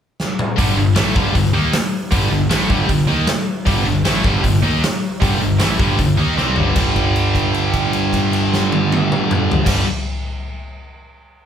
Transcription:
0.20 snare
0.39 mid tom
0.56 G1 G2 D3 G3, kick, open hi-hat
0.77 G1 G2 D3
0.95 A1 A2 E3 A3, snare, open hi-hat
1.15 G1 G2 D3 G3, kick
1.35 G1 G2 D3, kick, open hi-hat
1.45 snare
1.53 D#2 D#3 A#3 D#4
1.73 snare, open hi-hat
2.11 G1 G2 D3 G3, kick, open hi-hat
2.30 G1 G2 D3, snare
2.49 A1 A2 E3 A3, snare, open hi-hat
2.69 G1 G2 D3 G3, kick
2.89 G1 G2 D3, kick, open hi-hat
2.99 snare
3.08 D#2 D#3 A#3 D#4
3.27 snare, open hi-hat
3.66 G1 G2 D3 G3, kick, open hi-hat
3.86 G1 G2 D3, snare
4.04 A1 A2 E3 A3, snare, open hi-hat
4.24 G1 G2 D3 G3, kick
4.43 G1 G2 D3, kick, open hi-hat
4.55 snare
4.62 D#2 D#3 A#3 D#4
4.84 snare, open hi-hat
5.21 G1 G2 D3 G3, kick, open hi-hat
5.40 G1 G2 D3, snare
5.59 A1 A2 E3 A3, snare, open hi-hat
5.79 G1 G2 D3 G3, kick
5.98 G1 G2 D3, kick, open hi-hat
6.17 D#2 D#3 A#3 D#4
6.37 C2 C3 G3 C4, snare
6.56 G1 G2 D3 G3, floor tom
6.74 G1 G2 D3, kick, crash
6.79 G3
6.96 kick, crash
7.16 crash
7.35 kick, crash
7.54 crash
7.73 kick, crash
7.93 crash
8.13 kick, crash
8.33 crash
8.54 snare
8.72 high tom
8.92 high tom
9.12 mid tom
9.31 mid tom
9.51 floor tom
9.64 G1 G2 D3, kick, snare, crash
9.68 G3

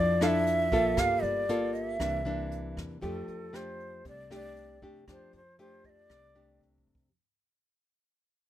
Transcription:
Already playing: F2 F3 D4 E4 A4 D5
0.21 D4 E4 A4 F5, cross-stick, closed hi-hat
0.27 E5
0.47 closed hi-hat
0.72 A#1 A#3 F4 A4, kick, closed hi-hat
0.97 G1 G3 F5, kick, cross-stick, closed hi-hat
1.23 G1 D5, closed hi-hat
1.49 A#3 F4 A4, closed hi-hat
1.74 D#5, closed hi-hat
1.86 E5
1.99 C2 C3 E3 A#3 D4, kick, cross-stick, closed hi-hat
2.25 E3 A#3 D4, closed hi-hat
2.52 closed hi-hat
2.77 E2, kick, cross-stick, closed hi-hat
3.02 F2 F3 A3 D4 G4 A4, kick, closed hi-hat
3.28 F2, closed hi-hat
3.53 A3 D4 G4 C5, cross-stick, closed hi-hat
3.80 closed hi-hat
4.05 C2 C3 D5, kick, closed hi-hat
4.31 A3 D4 G4, cross-stick, closed hi-hat
4.35 D5
4.56 closed hi-hat
4.82 F2 A3 D4 G4, kick, closed hi-hat
5.08 F2 F3 A3 D4 G4 C5, kick, cross-stick, closed hi-hat
5.33 F2 C5, closed hi-hat
5.59 A3 D4 G4 C5, closed hi-hat
5.84 D#5, kick, closed hi-hat
5.89 D5
6.10 C2 C3, kick, cross-stick, closed hi-hat
6.35 A3 D4 G4, closed hi-hat
6.61 kick
6.78 kick
6.87 F2
6.95 kick

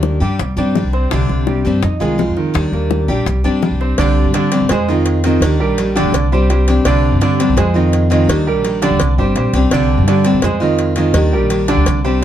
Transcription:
Already playing: D#2 D#3 G3 A#3 D4 G4 A#4
0.03 high bongo
0.20 G2 G3 D4 G4
0.39 C2, muted steel-string acoustic guitar stroke, high bongo
0.56 G2 G3 C4 D4 G4 D5, high bongo
0.75 G3 C4 D4 G4, high bongo, low bongo
0.83 C2
0.93 C4 C5, high bongo
1.11 C2 C3 D3 G3 C4 D4 G4, high bongo
1.29 C2, high bongo
1.47 G3 G4, high bongo
1.65 G2 G3 C4 D4 G4
1.82 F2 D#4 D#5, muted steel-string acoustic guitar stroke, high bongo
2.00 C2 D#3 G#3 C4 F4 G#4, high bongo
2.18 D#3 G#3 C4 F4, high bongo, low bongo
2.28 F2
2.37 D#3, high bongo
2.54 D#2 D#3 G3 D4 G4, high bongo
2.72 D#2 A#3 A#4, high bongo
2.91 high bongo
3.08 A#1 G3 D4 G4
3.26 C2, muted steel-string acoustic guitar stroke, high bongo
3.44 G2 G3 C4 D4 G4 D5, high bongo
3.62 G3 C4 D4 G4, high bongo, low bongo
3.71 C2
3.81 C4 C5, high bongo
3.98 C2 C3 D3 G3 C4 D4 G4 D5, cowbell
4.24 G2
4.33 D3 G3 C4 D4 G4 D5, cowbell
4.52 G3 C4 D4 G4, cowbell
4.61 C2
4.69 F2 G#3 G#4 C5, muted steel-string acoustic guitar stroke, cowbell
4.88 D#3 G#3 C4 D#4 F4 D#5
5.06 cowbell
5.24 D#3 G#3 C4 F4 D#5, cowbell
5.41 D#2 D#3 G3 D4 G4, cowbell
5.60 G3 G4 A#4
5.67 A#1
5.78 D#3 G3 D4 G4, cowbell
5.96 D3 G3 D4 G4 D5, cowbell
6.03 D2
6.12 C2, muted steel-string acoustic guitar stroke, cowbell
6.32 G3 C4 D4 G4 C5
6.50 G3 G4 C5, cowbell
6.68 G3 C4 D4 G4, cowbell
6.85 C2 C3 D3 G3 C4 D4 G4 D5, cowbell
7.12 G2
7.21 D3 G3 C4 D4 G4 D5, cowbell
7.40 G3 C4 D4 G4, cowbell
7.49 C2
7.57 F2 G#3 G#4 C5, muted steel-string acoustic guitar stroke, cowbell
7.74 D#3 G#3 C4 D#4 F4 D#5
7.93 cowbell
8.10 D#3 G#3 C4 F4 D#5, cowbell
8.28 D#2 D#3 G3 D4 G4, cowbell
8.47 G3 G4 A#4
8.56 A#1
8.64 D#3 G3 D4 G4, cowbell
8.82 D3 G3 D4 G4 D5, cowbell
8.91 D#2
9.00 C2, muted steel-string acoustic guitar stroke, cowbell
9.18 G1 G3 C4 D4 G4 C5
9.35 A#1 G3 G4 C5, cowbell
9.53 C2 G3 C4 D4 G4, cowbell
9.71 C2 C3 D3 G3 C4 D4 G4 D5, cowbell
9.98 G2
10.07 D3 G3 C4 D4 G4 D5, cowbell
10.25 G3 C4 D4 G4, cowbell
10.33 C2
10.42 F2 G#3 G#4 C5, muted steel-string acoustic guitar stroke, cowbell
10.60 D#3 G#3 C4 D#4 F4 D#5
10.79 cowbell
10.96 D#3 G#3 C4 F4 D#5, cowbell
11.14 D#2 D#3 G3 D4 G4, cowbell
11.33 G3 G4 A#4
11.40 A#1
11.50 D#3 G3 D4 G4, cowbell
11.68 D3 G3 D4 G4 D5, cowbell
11.76 D2
11.86 C2, muted steel-string acoustic guitar stroke, cowbell
12.04 G3 C4 D4 G4 C5

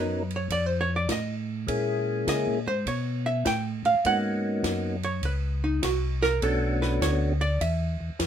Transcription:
Already playing: F#2 F#3 B3 C#4 D#4 A#4 B4
0.30 ride
0.36 C#5
0.50 F2 D5, kick, ride
0.66 C5
0.81 C#5
0.96 D5
1.09 A2 D#5, kick, snare, hi-hat pedal, ride
1.67 A#2 G#3 A#3 C#4 E4 G#4, kick, ride
2.27 C#3 D#5, kick, snare, hi-hat pedal, ride
2.47 A#2
2.67 G#2 C5
2.86 B2 C#5, kick, ride
3.26 E5
3.45 A2 G5, kick, snare, hi-hat pedal, ride
3.84 A2 F5, ride
4.05 G#2 A#3 B3 C#4 D#4 F#4 F#5, kick, ride
4.64 F#2, kick, snare, hi-hat pedal, ride
5.03 C#5, ride
5.23 C#2 B4, kick, ride
5.64 D#4
5.83 C2 F#4, kick, snare, hi-hat pedal, ride
6.22 A#4, snare
6.42 B1 A3 B3 C#4 D4 F#4 A4, kick, ride
6.82 B4, snare
7.01 D2 C#5, kick, snare, hi-hat pedal, ride
7.41 D5, ride
7.61 E2 E5, kick, ride
8.00 E2
8.19 F2, kick, snare, hi-hat pedal, ride

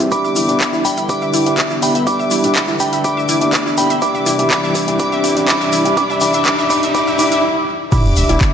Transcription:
Already playing: G3 G4
0.00 E2 E4, closed hi-hat
0.11 D3 B3 D4 E4 G4 E5 B5 D6, kick, closed hi-hat, riser, shaker
0.24 E1 E5, shaker
0.36 E1 E4, open hi-hat, shaker
0.49 E1 D4 G4 E5, closed hi-hat, shaker
0.60 E5, kick, clap, closed hi-hat, shaker
0.73 D1 E4, shaker
0.85 D4 G4 E5 G5 B5, kick, open hi-hat, shaker
0.97 D1 E5, closed hi-hat, shaker
1.09 D4 G4 E5 B5 D6, kick, closed hi-hat, shaker
1.21 E5, shaker
1.34 E4, open hi-hat, shaker
1.46 E1 D4 G4 E5, closed hi-hat, shaker
1.58 E5, kick, clap, closed hi-hat, shaker
1.70 E4, shaker
1.82 D4 G4 E5 G5 B5, open hi-hat, shaker
1.95 E5, closed hi-hat, shaker
2.07 D4 G4 E5 B5 D6, kick, closed hi-hat, shaker
2.19 E1 E5, shaker
2.31 E4, open hi-hat, shaker
2.44 D4 G4 E5, closed hi-hat, shaker
2.55 E5, kick, clap, closed hi-hat, shaker
2.68 E4, shaker
2.80 D4 G4 E5 G5 B5, kick, open hi-hat, shaker
2.93 E5, closed hi-hat, shaker
3.04 D4 G4 E5 B5 D6, kick, closed hi-hat, shaker
3.17 E5, shaker
3.29 E4, open hi-hat, shaker
3.41 D4 G4 E5, closed hi-hat, shaker
3.53 E5, kick, clap, closed hi-hat, shaker
3.66 E4, shaker
3.77 E1 D4 G4 E5 G5 B5, open hi-hat, shaker
3.90 E1 E5, closed hi-hat, shaker
4.02 C3 E3 G3 D4 E4 G4 E5 B5 D6, kick, closed hi-hat, shaker
4.15 E5, shaker
4.26 E4, open hi-hat, shaker
4.39 D4 G4 E5, closed hi-hat, shaker
4.51 B5 D6, kick, clap, closed hi-hat, shaker
4.64 E5, shaker
4.75 E4, kick, open hi-hat, shaker
4.88 D4 G4 E5, closed hi-hat, shaker
4.99 D4 G4 E5 B5 D6, kick, closed hi-hat, shaker
5.12 E5, shaker
5.24 E4, open hi-hat, shaker
5.37 D4 G4 E5, closed hi-hat, shaker
5.48 D4 G4 E5 B5 D6, kick, clap, closed hi-hat, shaker
5.61 E5, shaker
5.73 E4, open hi-hat, shaker
5.85 D4 G4 E5, closed hi-hat, shaker
5.97 D4 G4 E5 B5 D6, kick, closed hi-hat, shaker
6.10 E5, shaker
6.21 D4 G4 E5 B5 D6, open hi-hat, shaker
6.33 E5, closed hi-hat, shaker
6.45 D4 G4 B5 D6, kick, clap, closed hi-hat, shaker
6.59 E5, shaker
6.70 D4 G4 E5 B5 D6, kick, open hi-hat, shaker
6.83 E5, closed hi-hat, shaker
6.94 D4 G4 E5 B5 D6, kick, closed hi-hat, shaker
7.07 E5, shaker
7.19 E2 D4 G4 E5 B5 D6, open hi-hat, shaker
7.32 E5, closed hi-hat, shaker
7.92 D3 G3 B3 D4 E4 G4 E5 B5 D6, kick, closed hi-hat, crash, sub drop, shaker
8.05 E1, shaker
8.16 E1 E5 E6, open hi-hat, shaker
8.29 E1 D4 E4 G4 E5, closed hi-hat, shaker
8.41 kick, clap, closed hi-hat, shaker

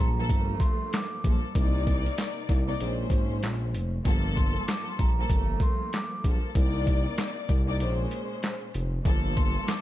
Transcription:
Already playing: A#5
0.00 A#1
0.17 G2 F3 A#3 A4
0.30 G1 G2 F3 A3 A#3, kick, closed hi-hat
0.60 C6, kick, closed hi-hat
0.93 D6, snare, clap, closed hi-hat
1.24 A#1 G2 F3 A#3 A4, kick, closed hi-hat
1.55 C2 C3 A#3 D#4 D5, kick, closed hi-hat
1.87 kick, closed hi-hat
2.06 closed hi-hat
2.18 snare, clap, closed hi-hat
2.49 C2, kick, snare, closed hi-hat
2.65 C3 A#3 D#4 D5
2.79 A#1 A#2 G#3 C#4 C5, closed hi-hat
3.10 G#1, kick, closed hi-hat
3.43 A#1, snare, clap, closed hi-hat
3.74 F1, closed hi-hat
4.03 G1 G2 F3 A#3 A4, kick, closed hi-hat
4.35 C6, kick, closed hi-hat
4.67 D6, snare, clap, closed hi-hat
4.88 C6
4.99 A#1 A#5, kick, closed hi-hat
5.17 G2 F3 A#3 A4
5.30 G1 G2 F3 A3 A#3, kick, closed hi-hat
5.60 C6, kick, closed hi-hat
5.93 D6, snare, clap, closed hi-hat
6.24 A#1 G2 F3 A#3 A4, kick, closed hi-hat
6.55 C2 C3 A#3 D#4 D5, kick, closed hi-hat
6.87 kick, closed hi-hat
7.18 snare, clap, closed hi-hat
7.49 C2, kick, closed hi-hat
7.65 C3 A#3 D#4 D5
7.79 A#1 A#2 G#3 C#4 C5, closed hi-hat
8.11 closed hi-hat
8.43 snare, clap, closed hi-hat
8.74 F1, closed hi-hat
9.04 G1 G2 F3 A#3 A4, kick, closed hi-hat
9.36 C6, kick, closed hi-hat
9.67 D6, snare, clap, closed hi-hat

